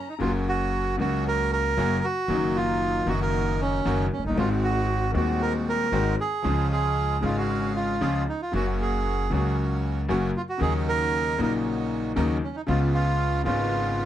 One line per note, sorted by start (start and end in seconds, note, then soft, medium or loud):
0.00 0.16 A#5 medium
0.09 0.15 D#4 medium
0.19 0.95 F#1 medium
0.19 0.95 F#2 medium
0.19 0.94 C#3 medium
0.19 0.95 F#3 medium
0.19 0.95 A#3 medium
0.19 0.96 C#4 medium
0.19 0.32 F4 medium
0.19 0.96 F#4 medium
0.23 0.96 F#4 medium
0.48 0.96 F#4 loud
0.98 1.73 C#2 medium
0.98 1.73 C#3 medium
0.98 1.73 F#3 medium
0.98 1.73 A#3 medium
0.98 1.74 A#3 medium
0.98 1.74 C#4 medium
0.98 1.74 F#4 medium
0.98 1.24 F#4 medium
0.98 1.74 F#4 medium
1.28 1.51 A#4 loud
1.53 2.06 A#4 loud
1.77 1.99 F#1 medium
1.77 1.99 F#2 medium
1.77 1.99 C#3 medium
1.77 1.99 F#3 medium
1.77 1.99 A#3 medium
1.77 1.99 C#4 medium
1.77 2.00 F#4 medium
2.04 2.57 F#4 medium
2.28 3.02 F#1 medium
2.28 3.03 F#2 medium
2.28 3.02 D#3 medium
2.28 3.03 F#3 medium
2.28 3.03 A#3 medium
2.28 3.04 A#3 medium
2.28 3.03 D#4 medium
2.32 3.05 D#4 medium
2.56 3.09 F4 loud
3.06 3.81 F#1 medium
3.06 3.81 F#2 medium
3.06 3.80 D#3 medium
3.06 3.81 F#3 medium
3.06 3.81 A#3 medium
3.06 3.81 D#4 medium
3.06 3.81 F#4 medium
3.06 3.20 F#4 medium
3.10 3.82 F#4 medium
3.22 3.61 A#4 medium
3.61 4.08 C#4 medium
3.85 4.07 F#1 medium
3.85 4.07 F#2 medium
3.85 4.07 D#3 medium
3.85 4.07 F#3 medium
3.85 4.06 A#3 medium
3.85 4.07 A#3 medium
3.85 4.07 D#4 medium
3.85 4.07 F#4 medium
4.13 4.24 C#4 medium
4.17 4.24 F1 soft
4.23 4.30 F#1 medium
4.23 4.37 D#4 medium
4.30 4.36 G1 medium
4.30 4.37 G1 medium
4.35 5.11 G#1 medium
4.35 5.11 G#1 loud
4.35 5.11 G#2 medium
4.35 5.10 D#3 medium
4.35 5.10 G#3 medium
4.35 5.11 G#3 medium
4.35 5.11 C4 medium
4.35 4.49 F4 medium
4.35 5.11 F#4 medium
4.35 5.12 F#4 medium
4.64 5.11 F#4 loud
5.12 5.88 D#1 medium
5.12 5.88 D#2 medium
5.12 5.87 D#3 medium
5.12 5.88 G#3 medium
5.12 5.88 C4 medium
5.12 5.88 F#4 medium
5.12 5.89 F#4 medium
5.16 5.42 F#4 medium
5.42 5.53 A#4 medium
5.69 6.16 A#4 loud
5.92 6.13 G#1 medium
5.92 6.14 G#1 medium
5.92 6.14 G#2 medium
5.92 6.14 D#3 medium
5.92 6.13 G#3 medium
5.92 6.14 G#3 medium
5.92 6.14 C4 medium
5.92 6.14 F#4 medium
6.21 6.67 G#4 medium
6.42 7.18 C#2 medium
6.42 7.18 C#3 medium
6.42 7.17 F3 medium
6.42 7.17 G#3 medium
6.42 7.18 G#3 medium
6.42 7.18 C#4 medium
6.42 7.19 C#4 medium
6.42 7.18 F4 medium
6.47 7.19 G#4 medium
6.72 7.24 G#4 loud
7.21 7.97 G#1 medium
7.21 7.97 G#2 medium
7.21 7.96 C#3 medium
7.21 7.96 G#3 medium
7.21 7.97 G#3 medium
7.21 7.96 C#4 medium
7.21 7.97 C#4 medium
7.21 7.97 F5 medium
7.25 7.37 F4 medium
7.25 7.98 G#4 medium
7.37 7.73 F#4 medium
7.76 8.24 F4 medium
8.01 8.23 C#2 medium
8.01 8.23 C#3 medium
8.01 8.23 F3 medium
8.01 8.23 G#3 medium
8.01 8.23 C#4 medium
8.01 8.23 F4 medium
8.01 8.23 G#4 medium
8.29 8.41 D#4 medium
8.42 8.53 F4 medium
8.52 9.27 F#1 medium
8.52 9.28 F#2 medium
8.52 9.27 C#3 medium
8.52 9.28 F#3 medium
8.52 9.27 A#3 medium
8.52 9.28 A#3 medium
8.52 9.27 C#4 medium
8.52 9.27 F#4 medium
8.52 8.67 F#4 medium
8.56 9.29 F#4 medium
8.82 9.32 G#4 medium
9.30 10.05 C#2 medium
9.30 10.06 C#2 medium
9.30 10.06 C#3 medium
9.30 10.05 F#3 medium
9.30 10.05 A#3 medium
9.30 10.06 A#3 medium
9.30 10.05 C#4 medium
9.30 10.05 F#4 medium
9.30 9.57 G#4 medium
9.34 10.07 F#4 medium
10.08 10.31 F#1 medium
10.08 10.31 F#2 medium
10.08 10.31 C#3 medium
10.08 10.31 F#3 medium
10.08 10.31 A#3 medium
10.08 10.31 C#4 medium
10.08 10.31 F#4 medium
10.36 10.42 F4 medium
10.49 10.61 F#4 medium
10.58 11.35 D#2 medium
10.58 11.33 C#3 medium
10.58 11.34 D#3 medium
10.58 11.34 F#3 medium
10.58 11.35 A#3 medium
10.58 11.35 C#4 medium
10.58 11.35 D#4 medium
10.58 11.35 F#4 medium
10.62 11.36 D#4 medium
10.62 10.73 G#4 medium
10.89 11.41 A#4 loud
11.36 12.12 A#1 medium
11.36 12.13 A#1 medium
11.36 12.12 A#2 medium
11.36 12.11 C#3 medium
11.36 12.12 F#3 medium
11.36 12.13 A#3 medium
11.36 12.12 C#4 medium
11.36 12.13 D#4 medium
11.36 12.13 F#4 medium
11.41 12.13 D#4 medium
11.41 11.53 A#4 medium
12.16 12.38 D#2 medium
12.16 12.38 C#3 medium
12.16 12.38 D#3 medium
12.16 12.38 F#3 medium
12.16 12.38 A#3 medium
12.16 12.38 C#4 medium
12.16 12.38 D#4 medium
12.16 12.38 F#4 medium
12.43 12.56 C#4 medium
12.56 12.62 D#4 medium
12.67 13.42 C#2 loud
12.67 13.42 C#2 medium
12.67 13.42 C#3 medium
12.67 13.42 G#3 medium
12.67 13.42 B3 medium
12.67 13.42 C#4 medium
12.67 13.42 F4 medium
12.67 12.80 F4 medium
12.67 13.43 F4 medium
12.94 13.42 F4 loud
13.44 14.05 G#1 medium
13.44 14.05 G#1 loud
13.44 14.05 G#2 medium
13.44 14.05 C#3 medium
13.44 14.05 G#3 medium
13.44 14.05 B3 medium
13.44 14.05 C#4 medium
13.44 14.05 F4 medium